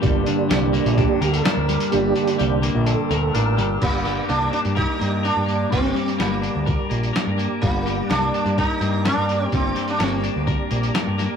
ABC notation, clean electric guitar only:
X:1
M:4/4
L:1/8
Q:1/4=126
K:Gm
V:1 name="Clean electric guitar"
[G,,G,DB] D, G, B, D B D G, | G,, D, G, B, D B D G, | G,, G, B, D B B, B B, | G,, G, B, D B B, B B, |
G,, G, B, D B B, B B, | G,, G, B, D B B, B B, |]